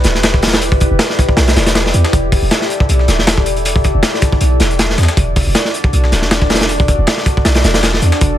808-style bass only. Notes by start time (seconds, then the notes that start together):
0.05 D1
0.15 E1
0.91 E1
1.37 B1
1.56 E1
1.94 E2
2.13 E1
2.42 E1
2.89 B1
3.08 D1
3.18 E1
3.95 E1
4.41 B1
4.60 E1
4.98 E2
5.17 E1
5.47 E1
5.93 B1
6.12 D1
6.22 E1
6.98 E1
7.45 B1
7.64 E1
8.02 E2
8.21 E1